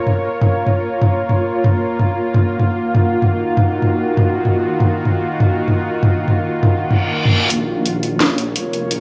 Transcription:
Already playing: synth drone A#3 F4 A#4 C#5
0.07 mid tom
0.41 mid tom
0.67 mid tom
1.02 mid tom
1.29 mid tom
1.64 mid tom
1.89 synth drone D#3 F#4
1.99 mid tom
2.34 mid tom
2.59 mid tom
2.95 mid tom
3.22 mid tom
3.57 mid tom
3.82 mid tom
4.17 mid tom
4.45 mid tom
4.80 mid tom
5.05 mid tom
5.40 mid tom
5.68 mid tom
6.03 mid tom
6.28 mid tom
6.63 mid tom
6.80 reverse cymbal
6.91 mid tom
7.25 mid tom
7.50 detuned saw bass A#1, synth drone A#3 F4 A#4 C#5, closed hi-hat, riser
7.86 closed hi-hat
8.03 closed hi-hat
8.20 snare, closed hi-hat
8.38 closed hi-hat
8.56 detuned saw bass F1, closed hi-hat
8.73 closed hi-hat
8.91 detuned saw bass A#1, closed hi-hat

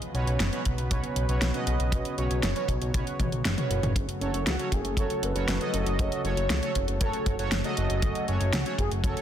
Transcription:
Already playing: analog synth pad C#3 F#3 B3 F#4 B4
0.02 closed hi-hat
0.14 analog synth bass B1, analog polysynth B2 C#4 F#4 B4 C#5, closed hi-hat
0.27 analog synth bass B1, closed hi-hat
0.40 analog synth bass F#1, snare, closed hi-hat
0.53 analog polysynth B2 C#4 F#4 B4 C#5, closed hi-hat
0.65 analog synth bass B1, kick, closed hi-hat
0.78 analog synth bass B1, closed hi-hat
0.91 analog synth bass B1, analog polysynth B2 C#4 F#4 B4 C#5, kick, closed hi-hat
1.04 closed hi-hat
1.16 analog synth bass B1, closed hi-hat
1.29 analog synth bass B1, analog polysynth B2 C#4 F#4 B4 C#5, closed hi-hat
1.41 analog synth bass B1, snare, closed hi-hat
1.54 analog polysynth B2 C#4 F#4 B4 D#5, closed hi-hat
1.67 analog synth bass B1, closed hi-hat
1.80 analog synth bass B1, closed hi-hat
1.92 analog synth bass B1, analog synth pad C#5, kick, closed hi-hat
2.05 closed hi-hat
2.18 analog synth bass B1, analog polysynth B2 C#4 F#4 B4 C#5, closed hi-hat
2.31 analog synth bass B1, closed hi-hat
2.43 analog synth bass F#1, snare, closed hi-hat
2.56 analog polysynth B2 C#4 F#4 B4 C#5, closed hi-hat
2.68 analog synth bass B1, kick, closed hi-hat
2.82 analog synth bass B1, closed hi-hat
2.94 analog synth bass B1, analog polysynth B2 C#4 F#4 B4 C#5, kick, closed hi-hat
3.07 closed hi-hat
3.20 analog synth bass B1, kick, closed hi-hat, high tom
3.32 analog synth bass B1, closed hi-hat
3.45 analog synth bass F#1, snare, closed hi-hat
3.58 analog polysynth B2 C#4 F#4 B4 C#5, closed hi-hat, mid tom
3.70 analog synth bass F#1, closed hi-hat
3.83 analog synth bass F#1, closed hi-hat, mid tom
3.96 analog synth bass F#1, analog synth pad F#3 A3 A4, kick, closed hi-hat
4.09 closed hi-hat
4.21 analog synth bass F#1, analog polysynth F#3 C#4 F#4 A4 C#5, closed hi-hat
4.34 analog synth bass F#1, closed hi-hat
4.47 analog synth bass C#2, analog synth lead F#4, snare, closed hi-hat
4.59 analog polysynth F#3 C#4 F#4 A4 C#5, closed hi-hat
4.72 analog synth bass F#1, analog synth lead G#4, kick, closed hi-hat
4.85 analog synth bass F#1, closed hi-hat
4.97 analog synth bass F#1, analog polysynth F#3 C#4 F#4 A4 C#5, analog synth lead A4, kick, closed hi-hat
5.10 closed hi-hat
5.23 analog synth bass F#1, analog synth lead B4, closed hi-hat
5.35 analog synth bass F#1, analog polysynth F#3 C#4 F#4 A4 C#5, closed hi-hat
5.48 analog synth bass F#1, snare, closed hi-hat
5.61 analog polysynth F#3 C#4 F#4 A4 D#5, closed hi-hat
5.74 analog synth bass F#1, analog synth lead A4, closed hi-hat
5.86 analog synth bass F#1, closed hi-hat
5.99 analog synth bass F#1, analog synth lead C#5, kick, closed hi-hat
6.12 closed hi-hat
6.24 analog synth bass F#1, analog polysynth F#3 C#4 F#4 A4 C#5, closed hi-hat
6.37 analog synth bass F#1, closed hi-hat
6.50 analog synth bass C#2, snare, closed hi-hat
6.63 analog polysynth F#3 C#4 F#4 A4 C#5, closed hi-hat
6.75 analog synth bass F#1, kick, closed hi-hat
6.88 analog synth bass F#1, closed hi-hat
7.01 analog synth bass F#1, analog polysynth F#3 C#4 F#4 A4 C#5, analog synth lead A4, kick, closed hi-hat
7.13 closed hi-hat
7.26 analog synth bass F#1, kick, closed hi-hat
7.39 analog synth bass F#1, analog polysynth F#3 C#4 F#4 A4 C#5, closed hi-hat
7.52 analog synth bass F#1, snare, closed hi-hat
7.64 analog polysynth F#3 C#4 F#4 A4 D#5, closed hi-hat
7.77 analog synth bass F#1, closed hi-hat
7.90 analog synth bass F#1, closed hi-hat
8.02 analog synth bass F#1, analog synth pad G#5, kick, closed hi-hat
8.15 closed hi-hat
8.28 analog synth bass F#1, analog polysynth F#3 C#4 F#4 A4 C#5, closed hi-hat
8.41 analog synth bass F#1, closed hi-hat
8.53 analog synth bass C#2, analog synth lead F#4, snare, closed hi-hat
8.66 analog polysynth F#3 C#4 F#4 A4 C#5, closed hi-hat
8.78 analog synth bass F#1, analog synth lead G#4, kick, closed hi-hat
8.91 analog synth bass F#1, closed hi-hat
9.04 analog synth bass F#1, analog polysynth F#3 C#4 F#4 A4 C#5, analog synth lead A4, kick, closed hi-hat
9.17 closed hi-hat

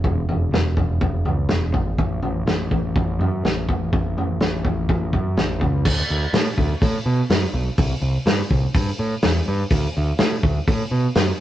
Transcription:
0.04 picked electric bass E1, kick, floor tom
0.28 picked electric bass E1, floor tom
0.51 picked electric bass E1, snare, floor tom
0.77 picked electric bass E1, kick, floor tom
1.01 picked electric bass E1, kick, floor tom
1.25 picked electric bass C#2, floor tom
1.49 picked electric bass E1, snare, floor tom
1.74 picked electric bass G#1, kick, floor tom
1.98 picked electric bass A1, kick, floor tom
2.22 picked electric bass A1, floor tom
2.46 picked electric bass A1, snare, floor tom
2.71 picked electric bass A1, kick, floor tom
2.96 picked electric bass A1, kick, floor tom
3.19 picked electric bass F#2, floor tom
3.43 picked electric bass A1, snare, floor tom
3.69 picked electric bass A1, kick, floor tom
3.93 picked electric bass A1, kick, floor tom
4.17 picked electric bass A1, floor tom
4.41 picked electric bass A1, snare, floor tom
4.64 picked electric bass A1, kick, floor tom
4.89 picked electric bass A1, kick, floor tom
5.13 picked electric bass F#2, kick, floor tom
5.37 picked electric bass A1, snare, floor tom
5.61 picked electric bass C#2, kick, floor tom
5.85 picked electric bass D2, kick, crash
6.10 picked electric bass D2
6.33 picked electric bass A2, snare, open hi-hat
6.58 picked electric bass D2, kick
6.82 picked electric bass A2, kick, open hi-hat
7.06 picked electric bass B2
7.30 picked electric bass F#2, snare, open hi-hat
7.53 picked electric bass B1
7.78 picked electric bass C2, kick, open hi-hat
8.01 picked electric bass C2
8.26 picked electric bass G2, snare, open hi-hat
8.50 picked electric bass C2, kick
8.74 picked electric bass G2, kick, open hi-hat
8.99 picked electric bass A2
9.23 picked electric bass E2, snare, open hi-hat
9.48 picked electric bass G2
9.70 picked electric bass D2, kick, open hi-hat
9.97 picked electric bass D2
10.19 picked electric bass A2, snare, open hi-hat
10.43 picked electric bass D2, kick
10.68 picked electric bass A2, kick, open hi-hat
10.91 picked electric bass B2
11.15 picked electric bass F#2, snare, open hi-hat

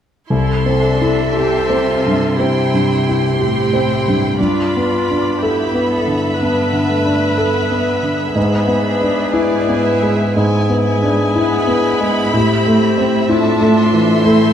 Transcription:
0.29 grand piano C2, cello section C3, viola section E4 A4, clarinet A4, violin section E5 C6
0.66 grand piano C4
0.83 viola section D4
1.02 grand piano E4
1.34 viola section C4 G4, grand piano G4, violin section C6
1.70 grand piano C4
1.87 viola section F4
2.06 grand piano G2
2.36 grand piano C4, viola section E4, clarinet G4, violin section G5 C6
2.74 grand piano G2
3.09 grand piano E4
3.37 cello section A2, viola section C4 E4, grand piano G4, violin section G5
3.73 grand piano C4
4.08 grand piano G2
4.39 cello section G2, grand piano G2, viola section D4 F4, clarinet F4, violin section D5 B5
4.77 grand piano B3
4.89 violin section D5
5.10 grand piano D4
5.40 viola section B3 G4, clarinet E4, grand piano A4, violin section E5 B5
5.74 grand piano B3
5.90 viola section A4
6.07 grand piano D3
6.39 viola section B3 B4, grand piano B3, clarinet D4
6.73 grand piano D3
6.89 viola section A3
7.05 grand piano D4
7.38 viola section B3, grand piano A4
7.71 grand piano B3
8.03 grand piano D3
8.35 grand piano G#2, cello section G#2, viola section B3 G#4, clarinet B4, violin section B5
8.67 grand piano B3
8.86 viola section D4
9.01 grand piano D4
9.33 grand piano E4, viola section E4, violin section D5 G#5
9.68 grand piano B3
9.85 violin section E5
10.03 grand piano G#3
10.36 grand piano G#2, viola section E4, clarinet G#4, violin section G#5
10.69 grand piano B3
10.85 violin section G#5
11.02 grand piano D4
11.35 viola section B3, grand piano E4, violin section B5
11.67 grand piano B3
11.85 viola section B3
12.01 grand piano G#3
12.33 grand piano A2, cello section A2, viola section C4, clarinet G4, violin section E5
12.66 grand piano A3
12.81 violin section E5
12.98 grand piano C4
13.29 viola section D4 A4, grand piano E4, clarinet F4, violin section A5
13.61 grand piano A3
13.79 violin section C6
13.93 grand piano E3
14.23 grand piano A3, viola section C4, clarinet E4

